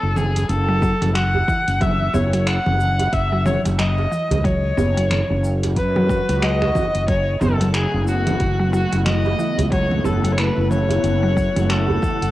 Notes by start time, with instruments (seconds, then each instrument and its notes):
Already playing: kamancheh A4
0.03 fretless electric bass F#1
0.16 kamancheh G#4, low conga, shaker
0.35 closed hi-hat, djembe tone, shaker
0.49 fretless electric bass F#1, kamancheh A4, closed hi-hat, shaker
0.69 synth pluck F#3
0.82 synth pluck F#3, kick, shaker
1.02 fretless electric bass F#1, synth pluck F#3, closed hi-hat, low conga, shaker
1.15 synth pluck F#3, kamancheh F#5, finger snap, closed hi-hat, shaker
1.35 djembe bass
1.48 synth pluck E3, kick, djembe slap, shaker
1.68 fretless electric bass F#1, closed hi-hat, shaker
1.81 synth pluck F#3, kamancheh E5, kick, closed hi-hat, low conga, shaker
2.14 fretless electric bass F#1, synth pluck B3, kamancheh C#5, djembe bass, shaker
2.33 synth pluck F#3, closed hi-hat, shaker
2.47 kamancheh F#5, finger snap, closed hi-hat, shaker
2.66 fretless electric bass F#1, low conga
2.80 shaker
2.99 closed hi-hat, djembe tone, shaker
3.13 fretless electric bass F#1, kamancheh E5, kick, closed hi-hat, shaker
3.32 synth pluck F#3
3.46 synth pluck F#3, kamancheh C#5, low conga, shaker
3.65 fretless electric bass F#1, synth pluck F#3, closed hi-hat, djembe slap, shaker
3.78 synth pluck F#3, kamancheh D#5, finger snap, closed hi-hat, shaker
3.98 djembe slap, djembe tone
4.11 synth pluck E3, shaker
4.31 fretless electric bass C#2, closed hi-hat, djembe bass, low conga, shaker
4.44 synth pluck F#3, kamancheh C#5, kick, closed hi-hat, shaker
4.77 fretless electric bass F#1, synth pluck B3, djembe tone, djembe bass, shaker
4.97 synth pluck F#3, closed hi-hat, shaker
5.11 finger snap, closed hi-hat, low conga, shaker
5.30 fretless electric bass F#1, djembe tone
5.44 shaker
5.63 closed hi-hat, djembe tone, shaker
5.76 fretless electric bass F#2, kamancheh B4, kick, closed hi-hat, swell, shaker
5.96 synth pluck F#3, low conga
6.09 synth pluck F#3, kick, djembe slap, shaker
6.29 fretless electric bass C#2, synth pluck F#3, closed hi-hat, shaker
6.42 synth pluck F#3, kamancheh D#5, finger snap, closed hi-hat, shaker
6.62 finger snap, djembe bass
6.75 synth pluck E3, kick, djembe slap, low conga, shaker
6.95 fretless electric bass F#1, closed hi-hat, shaker
7.08 ambient pad C#3, synth pluck F#3, kamancheh C#5, synth texture F#5, kick, closed hi-hat, shaker
7.31 ambient pad F#3 B3
7.41 fretless electric bass F#1, synth pluck B3, kamancheh A4, low conga, djembe bass, shaker
7.51 ambient pad E4
7.61 synth pluck F#3, closed hi-hat, shaker
7.65 ambient pad A3
7.74 kamancheh G#4, finger snap, closed hi-hat, shaker
7.94 fretless electric bass F#1
8.08 kamancheh F#4, shaker
8.27 closed hi-hat, djembe tone, low conga, shaker
8.40 fretless electric bass F#1, kick, closed hi-hat, shaker
8.60 synth pluck F#3
8.73 synth pluck F#3, kamancheh F#4, shaker
8.92 fretless electric bass F#1, synth pluck F#3, closed hi-hat, djembe slap, shaker
9.06 synth pluck F#3, kamancheh D#5, finger snap, closed hi-hat, low conga, shaker
9.25 djembe slap, djembe tone
9.39 synth pluck E3, shaker
9.58 fretless electric bass C#2, closed hi-hat, djembe bass, shaker
9.72 synth pluck F#3, kamancheh C#5, kick, closed hi-hat, shaker
9.91 low conga
10.04 fretless electric bass F#1, synth pluck B3, kamancheh A4, djembe bass, shaker
10.24 synth pluck F#3, closed hi-hat, shaker
10.32 kamancheh C#5
10.38 kamancheh B4, finger snap, closed hi-hat, shaker
10.57 fretless electric bass F#1
10.71 kamancheh C#5, low conga, shaker
10.89 closed hi-hat, djembe tone, shaker
11.03 fretless electric bass F#1, closed hi-hat, shaker
11.23 synth pluck F#3
11.37 synth pluck F#3, kick, shaker
11.56 fretless electric bass F#1, synth pluck F#3, closed hi-hat, low conga, shaker
11.69 synth pluck F#3, kamancheh A4, finger snap, closed hi-hat, shaker
11.88 djembe bass
12.02 synth pluck E3, kick, djembe slap, shaker
12.22 fretless electric bass F#1, closed hi-hat, shaker